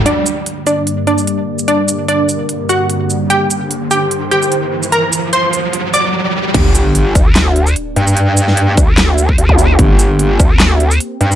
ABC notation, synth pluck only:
X:1
M:4/4
L:1/8
Q:"Swing 16ths" 1/4=148
K:Gm
V:1 name="Synth pluck"
[Dd]3 [Dd] z [Dd]3 | [Dd] z [Dd]3 [^F^f]3 | [Gg]3 [Gg] z [Gg]3 | [Bb] z [cc']3 [dd'] z2 |
z8 | z8 | z8 |]